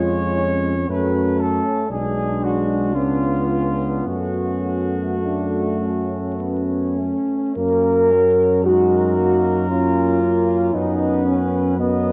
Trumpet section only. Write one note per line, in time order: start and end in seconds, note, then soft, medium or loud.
0.00 0.90 C#5 medium
0.90 1.39 B4 medium
1.40 1.90 A4 medium
1.91 2.41 G#4 medium
2.44 2.95 F#4 medium
2.95 4.07 F4 medium
4.08 6.92 F#4 soft
8.66 10.70 A#4 medium
10.76 11.80 B4 medium
11.80 12.12 D#5 medium